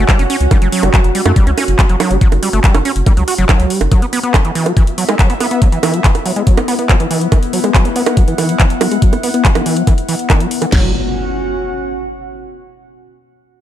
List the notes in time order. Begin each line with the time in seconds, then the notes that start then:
Already playing: C#4 F#4 F#5
0.09 G3, kick, clap, closed hi-hat, high bongo
0.19 F#1 C#4, closed hi-hat
0.30 C#4, open hi-hat
0.41 C#2, closed hi-hat
0.51 G3, kick, closed hi-hat, high bongo
0.62 F#1 F#3, closed hi-hat
0.72 F#3, open hi-hat
0.83 F#1 G3, closed hi-hat, high bongo
0.94 F#3, kick, clap, closed hi-hat
1.04 F#1, closed hi-hat
1.15 G3, open hi-hat
1.26 F#2 A3, closed hi-hat, high bongo
1.36 G3, kick, closed hi-hat
1.47 C#2 C#4, closed hi-hat
1.58 C#4, open hi-hat, high bongo
1.68 F#1, closed hi-hat
1.79 G3, kick, clap, closed hi-hat
1.89 F#1 F#3, closed hi-hat
2.00 F#3, open hi-hat, high bongo
2.11 F#1 G3, closed hi-hat
2.21 F#3, kick, closed hi-hat
2.32 F#1, closed hi-hat, high bongo
2.43 G3, open hi-hat
2.53 F#1 A3, closed hi-hat
2.64 G3, kick, clap, closed hi-hat
2.74 F#1 C#4, closed hi-hat, high bongo
2.85 C#4, open hi-hat
2.96 F#1, closed hi-hat
3.06 G3, kick, closed hi-hat, high bongo
3.17 C#2 F#3, closed hi-hat
3.28 F#4, open hi-hat
3.38 F#1 F#3, closed hi-hat
3.49 F#3, kick, clap, closed hi-hat, high bongo
3.60 C#2, closed hi-hat
3.70 G3, open hi-hat
3.81 F#1, closed hi-hat, high bongo
3.92 F#3 B3, kick, closed hi-hat, high bongo
4.02 B3, closed hi-hat
4.13 B3, open hi-hat
4.23 B3, closed hi-hat
4.28 E4 E5
4.34 F#3, kick, clap, closed hi-hat, high bongo
4.45 E3, closed hi-hat
4.55 E3, open hi-hat
4.66 F#3, closed hi-hat, high bongo
4.77 E3, kick, closed hi-hat
4.87 closed hi-hat
4.98 F#3, open hi-hat
5.09 G#3, closed hi-hat, high bongo
5.19 F#3, kick, clap, closed hi-hat
5.30 B3, closed hi-hat
5.40 B3, open hi-hat, high bongo
5.51 B3, closed hi-hat
5.62 F#3, kick, closed hi-hat
5.72 E3, closed hi-hat
5.83 E3, open hi-hat, high bongo
5.94 F#3, closed hi-hat
6.04 E3, kick, clap, closed hi-hat
6.15 closed hi-hat, high bongo
6.26 F#3, open hi-hat
6.36 G#3, closed hi-hat
6.47 F#3, kick, closed hi-hat
6.57 B3, closed hi-hat, high bongo
6.68 B3, open hi-hat
6.79 B3, closed hi-hat
6.89 F#3, kick, clap, closed hi-hat, high bongo
7.00 E3, closed hi-hat
7.08 E3 F#5, open hi-hat
7.21 F#3, closed hi-hat
7.32 E3, kick, closed hi-hat, high bongo
7.43 closed hi-hat
7.53 F#3, open hi-hat
7.64 G#3, closed hi-hat, high bongo
7.74 F#3, kick, clap, closed hi-hat
7.85 B3, closed hi-hat
7.96 B3, open hi-hat
8.06 B3, closed hi-hat, high bongo
8.17 F#3, kick, closed hi-hat
8.28 E3, closed hi-hat
8.38 E3, open hi-hat, high bongo
8.49 F#3, closed hi-hat
8.60 E3, kick, clap, closed hi-hat
8.70 closed hi-hat
8.81 F#3, open hi-hat, high bongo
8.91 G#3, closed hi-hat
9.02 F#3, kick, closed hi-hat
9.13 B3, closed hi-hat, high bongo
9.23 B3, open hi-hat
9.34 B3, closed hi-hat
9.45 F#3, kick, clap, closed hi-hat
9.55 E3, closed hi-hat, high bongo
9.66 E3, open hi-hat
9.77 F#3, closed hi-hat
9.87 E3, kick, closed hi-hat, high bongo
9.98 closed hi-hat
10.09 E3, open hi-hat
10.19 closed hi-hat
10.30 D#3, kick, clap, closed hi-hat, high bongo
10.40 F#3, closed hi-hat
10.51 open hi-hat
10.62 E3, closed hi-hat, high bongo
10.72 F#1 F#3 C#4, kick, snare, crash, impact
10.79 F#4
10.85 F#5